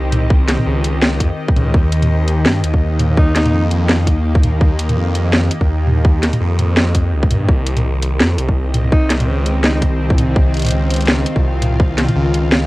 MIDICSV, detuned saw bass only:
0, 0, Header, 1, 2, 480
1, 0, Start_track
1, 0, Tempo, 359281
1, 402, Time_signature, 4, 2, 24, 8
1, 16924, End_track
2, 0, Start_track
2, 0, Title_t, "Detuned saw bass"
2, 0, Program_c, 0, 39
2, 0, Note_on_c, 0, 36, 89
2, 761, Note_off_c, 0, 36, 0
2, 883, Note_on_c, 0, 37, 104
2, 1604, Note_on_c, 0, 41, 98
2, 1624, Note_off_c, 0, 37, 0
2, 1728, Note_off_c, 0, 41, 0
2, 2081, Note_on_c, 0, 37, 94
2, 2304, Note_off_c, 0, 37, 0
2, 2321, Note_on_c, 0, 39, 101
2, 3280, Note_on_c, 0, 43, 83
2, 3300, Note_off_c, 0, 39, 0
2, 3504, Note_off_c, 0, 43, 0
2, 3520, Note_on_c, 0, 39, 86
2, 4708, Note_off_c, 0, 39, 0
2, 4714, Note_on_c, 0, 41, 109
2, 5438, Note_on_c, 0, 39, 82
2, 5459, Note_off_c, 0, 41, 0
2, 6627, Note_off_c, 0, 39, 0
2, 6633, Note_on_c, 0, 41, 110
2, 7344, Note_off_c, 0, 41, 0
2, 7493, Note_on_c, 0, 39, 86
2, 8438, Note_off_c, 0, 39, 0
2, 8559, Note_on_c, 0, 41, 108
2, 9519, Note_on_c, 0, 37, 94
2, 9539, Note_off_c, 0, 41, 0
2, 9762, Note_on_c, 0, 43, 81
2, 9782, Note_off_c, 0, 37, 0
2, 9985, Note_off_c, 0, 43, 0
2, 10000, Note_on_c, 0, 36, 105
2, 10959, Note_on_c, 0, 41, 84
2, 10979, Note_off_c, 0, 36, 0
2, 11184, Note_off_c, 0, 41, 0
2, 11194, Note_on_c, 0, 36, 84
2, 12384, Note_off_c, 0, 36, 0
2, 12395, Note_on_c, 0, 37, 109
2, 13119, Note_on_c, 0, 36, 84
2, 13139, Note_off_c, 0, 37, 0
2, 14307, Note_off_c, 0, 36, 0
2, 14323, Note_on_c, 0, 37, 105
2, 15029, Note_off_c, 0, 37, 0
2, 15175, Note_on_c, 0, 36, 88
2, 16119, Note_off_c, 0, 36, 0
2, 16239, Note_on_c, 0, 37, 107
2, 16924, Note_off_c, 0, 37, 0
2, 16924, End_track
0, 0, End_of_file